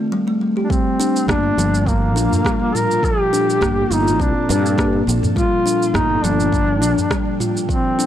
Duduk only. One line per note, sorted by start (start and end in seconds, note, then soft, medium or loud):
0.64 0.72 D4 medium
0.70 1.28 C4 medium
1.29 1.89 D4 loud
1.88 2.76 A#3 medium
2.75 3.07 A#4 loud
3.05 3.94 G4 loud
3.93 4.24 D#4 loud
4.22 4.50 D4 medium
4.51 5.04 D4 medium
5.36 5.96 F4 loud
5.95 6.25 D#4 loud
6.23 7.40 D4 loud
7.71 8.06 C4 medium